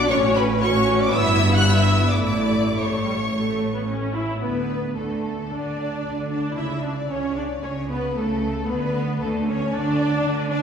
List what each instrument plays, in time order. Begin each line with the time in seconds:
0.08 double bass section A1, cello section A2, viola section C#4 F#4, violin section C#5 C#6
0.34 violin section B4 B5
0.60 viola section C#4 F#4, violin section C#5 C#6
1.00 violin section D5 D6
1.13 double bass section G1, cello section G2, viola section B3 E4, violin section E5 E6
1.51 violin section F#5
1.56 violin section F#6
1.66 viola section B3 E4, violin section E5 E6
2.08 violin section D5 D6
2.20 double bass section A1, cello section A2, viola section A3 E4, violin section D5 D6
2.78 viola section A3, violin section C#5 C#6
3.05 viola section G3
3.32 viola section A3
3.74 viola section B3
3.87 viola section C#4
4.15 viola section E4
4.41 double bass section D2, cello section D3, viola section B3, violin section B4
4.96 double bass section D2, cello section D3, viola section A3, violin section A4
5.50 double bass section D2, cello section D3, viola section D4, violin section D5
6.05 double bass section D2, cello section D3
6.30 viola section D4, violin section D5
6.57 double bass section C#2, cello section C#3, viola section E4, violin section E5
6.83 viola section D4, violin section D5
7.09 double bass section C#2, cello section C#3, viola section C#4, violin section C#5
7.35 viola section D4, violin section D5
7.62 double bass section C#2, cello section C#3, viola section C#4, violin section C#5
7.89 viola section B3, violin section B4
8.15 double bass section C#2, cello section C#3, viola section A3, violin section A4
8.68 double bass section D2, cello section D3, viola section B3, violin section B4
9.21 double bass section D2, cello section D3, viola section A3, violin section A4
9.47 viola section C#4, violin section C#5
9.73 double bass section D2, cello section D3, viola section D4, violin section D5
10.25 double bass section D2, cello section D3
10.50 viola section D4, violin section D5